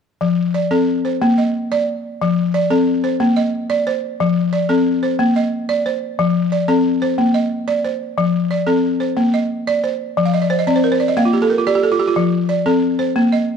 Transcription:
0.21 F3
0.54 D5
0.71 C4 A4
1.05 C5
1.22 A#3
1.38 D#5
1.72 D5
2.22 F3
2.54 D5
2.70 C4 A4
3.04 C5
3.20 A#3
3.36 D#5
3.70 D5
3.87 C5
4.20 F3
4.53 D5
4.69 C4 A4
5.03 C5
5.19 A#3
5.36 D#5
5.69 D5
5.86 C5
6.19 F3
6.52 D5
6.68 C4 A4
7.02 C5
7.18 A#3
7.34 D#5
7.68 D5
7.85 C5
8.18 F3
8.51 D5
8.67 C4 A4
9.00 C5
9.17 A#3
9.34 D#5
9.67 D5
9.84 C5
10.17 F3
10.25 F5
10.34 D#5
10.42 D5
10.50 C5
10.59 D#5
10.67 C4 D5
10.76 C5
10.84 A#4
10.92 C5
11.00 D5
11.08 D#5
11.17 A#3 F5
11.25 F4
11.33 G4
11.42 A4
11.50 A#4
11.58 F4
11.67 G4 D5
11.75 G4
11.83 A4
11.92 F4
11.99 G4
12.08 F4
12.16 F3
12.49 D5
12.66 C4 A4
12.99 C5
13.16 A#3
13.32 D#5

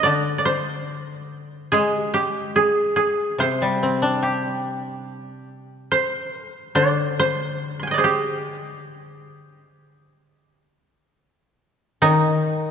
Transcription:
Already playing: C4 G4 G#4 C5
0.03 D3 D5
0.38 D5
0.45 C5
1.72 G#3 G#4
1.96 G4
2.14 G4
2.56 G#4
2.96 G#4
3.38 C3 C5
3.62 G3
3.83 C4
4.02 D4
4.23 G4
5.92 C5
6.46 G#4
6.75 D3 D5
7.19 C5
7.80 G#5 C6
7.87 D#5 G5
7.94 D5
7.98 G#4 C5
8.04 G4
12.02 D#3 D#4

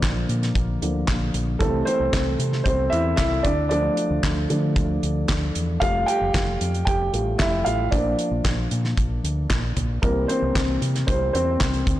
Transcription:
Already playing: D3 F3 A#3 A#4
0.03 A#1, kick, snare, clap, closed hi-hat
0.29 A#2, closed hi-hat
0.43 snare, closed hi-hat
0.55 A#1, kick, closed hi-hat
0.82 D2 D3 F3 A#3, closed hi-hat
1.08 A#1, kick, snare, clap, closed hi-hat
1.34 A#1, closed hi-hat
1.59 C2 E3 G3 A3 C4 A4, kick, closed hi-hat
1.85 C4 C5, closed hi-hat
2.00 C2
2.13 C2, kick, snare, clap, closed hi-hat
2.39 C3, closed hi-hat
2.53 snare
2.64 C2 C4 C5, kick, closed hi-hat
2.90 E2 E4 E5, closed hi-hat
3.16 C2 E4 E5, kick, snare, clap, closed hi-hat
3.43 D2 D4 D5, kick, closed hi-hat
3.69 F3 A3 D4 D5, closed hi-hat
3.97 closed hi-hat
4.10 D2
4.23 D2, kick, snare, clap, closed hi-hat
4.49 D3 F3 A3 D4, closed hi-hat
4.76 D2, kick, closed hi-hat
5.03 D2, closed hi-hat
5.29 D2, kick, snare, clap, closed hi-hat
5.55 E2, closed hi-hat
5.80 F1 G3 A3 F4 F5, kick, closed hi-hat
6.06 G4 G5, closed hi-hat
6.21 F1
6.34 F1, kick, snare, clap, closed hi-hat
6.61 F2, closed hi-hat
6.74 closed hi-hat
6.85 F1 G4 G5, kick, closed hi-hat
7.13 A1 G3 A3 F4, closed hi-hat
7.38 F1 E4 E5, kick, snare, clap, closed hi-hat
7.65 A1 F4 F5, closed hi-hat
7.91 A#1 F3 A#3 D4 D5, kick, closed hi-hat
8.19 closed hi-hat
8.31 A#1
8.45 A#1, kick, snare, clap, closed hi-hat
8.71 A#2, closed hi-hat
8.84 snare
8.97 A#1, kick, closed hi-hat
9.24 D2, closed hi-hat
9.50 A#1, kick, snare, clap, closed hi-hat
9.76 A#1, closed hi-hat, floor tom
10.02 C2 E3 G3 A#3 C4 A#4, kick, closed hi-hat
10.28 C4 C5, closed hi-hat
10.42 C2
10.55 C2, kick, snare, clap, closed hi-hat
10.82 C3, closed hi-hat
10.95 snare, closed hi-hat
11.07 C2 E3 G3 C4 C5, kick, closed hi-hat
11.33 E2 C4 C5, closed hi-hat
11.60 C2, kick, snare, clap, closed hi-hat
11.74 closed hi-hat
11.87 D2, kick, closed hi-hat, floor tom

